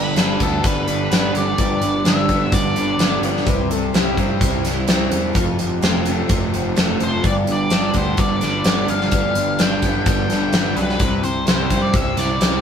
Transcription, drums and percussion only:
0.16 snare loud
0.16 closed hi-hat medium
0.40 kick medium
0.40 closed hi-hat medium
0.64 kick loud
0.64 closed hi-hat medium
0.88 closed hi-hat medium
1.12 snare loud
1.12 closed hi-hat medium
1.35 closed hi-hat medium
1.58 kick medium
1.58 closed hi-hat medium
1.82 closed hi-hat medium
2.05 snare loud
2.05 closed hi-hat medium
2.29 kick medium
2.29 closed hi-hat medium
2.52 kick loud
2.52 closed hi-hat medium
2.76 closed hi-hat medium
2.99 snare loud
2.99 closed hi-hat medium
3.23 closed hi-hat medium
3.37 snare soft
3.47 kick medium
3.47 closed hi-hat medium
3.71 closed hi-hat medium
3.94 snare loud
3.94 closed hi-hat medium
4.17 kick medium
4.17 closed hi-hat medium
4.41 kick loud
4.41 closed hi-hat medium
4.65 snare soft
4.65 closed hi-hat medium
4.88 snare loud
4.88 closed hi-hat medium
5.12 closed hi-hat medium
5.35 kick medium
5.35 closed hi-hat medium
5.59 closed hi-hat medium
5.83 snare loud
5.83 closed hi-hat medium
6.06 closed hi-hat medium
6.29 kick loud
6.29 closed hi-hat medium
6.54 closed hi-hat medium
6.76 snare loud
6.76 closed hi-hat medium
7.00 closed hi-hat soft
7.24 kick medium
7.24 closed hi-hat medium
7.47 closed hi-hat medium
7.70 snare medium
7.70 closed hi-hat medium
7.94 kick medium
7.94 closed hi-hat medium
8.17 kick loud
8.17 closed hi-hat medium
8.41 snare soft
8.41 closed hi-hat medium
8.64 snare loud
8.64 closed hi-hat medium
8.88 closed hi-hat medium
9.01 snare soft
9.12 kick loud
9.12 closed hi-hat medium
9.35 closed hi-hat medium
9.59 snare loud
9.59 closed hi-hat medium
9.82 kick medium
9.82 closed hi-hat medium
10.06 kick loud
10.06 closed hi-hat medium
10.30 snare soft
10.30 closed hi-hat medium
10.53 snare loud
10.53 closed hi-hat medium
10.77 closed hi-hat medium
10.89 snare soft
11.00 kick loud
11.00 closed hi-hat medium
11.24 closed hi-hat medium
11.47 snare loud
11.47 closed hi-hat medium
11.70 kick medium
11.70 closed hi-hat medium
11.94 kick loud
11.94 closed hi-hat medium
12.17 snare soft
12.17 closed hi-hat medium
12.41 snare loud
12.41 closed hi-hat medium

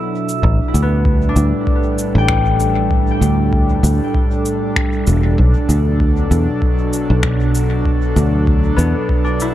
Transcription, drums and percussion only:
0.29 cabasa medium
0.43 kick loud
0.75 cabasa medium
1.05 kick loud
1.36 cabasa medium
1.67 kick loud
1.98 cabasa medium
2.28 finger snap medium
2.28 kick loud
2.60 cabasa medium
2.91 kick loud
3.22 cabasa medium
3.53 kick loud
3.84 cabasa medium
4.15 kick loud
4.46 cabasa medium
4.76 finger snap medium
4.76 kick loud
5.07 cabasa medium
5.38 kick loud
5.70 cabasa medium
6.00 kick loud
6.31 cabasa medium
6.62 kick loud
6.93 cabasa medium
7.23 finger snap medium
7.23 kick loud
7.55 cabasa medium
7.86 kick loud
8.17 cabasa medium
8.47 kick loud
8.79 cabasa medium
9.09 kick loud
9.40 cabasa medium

